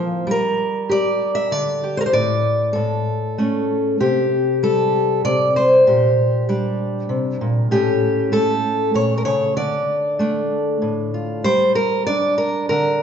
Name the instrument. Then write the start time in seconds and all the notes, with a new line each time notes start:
steel-string acoustic guitar
Already playing: F3 A#3 C4
0.27 G3
0.31 A#4
0.89 G4 D5
1.35 E5
1.51 D3 D5
1.84 G4
1.97 A#4 C5
2.06 C5
2.13 A2 D5
2.73 A2 A4
3.38 A3 C#4
4.00 C3 G4
4.63 G3 A4
5.25 C3 D5
5.56 C5
5.87 A#2 G4
6.49 G3 D4
7.09 C3
7.41 A#2
7.71 A2 A3 C#4 G4
8.32 A3 A4
8.94 A#2 C#5
9.18 A#4
9.25 C#3 C#5
9.56 D3 D5
10.19 A3 D4
10.82 A2
11.14 F4
11.44 G3 C5
11.75 A#4
12.07 D4 D5
12.38 A#4
12.69 D3 A#4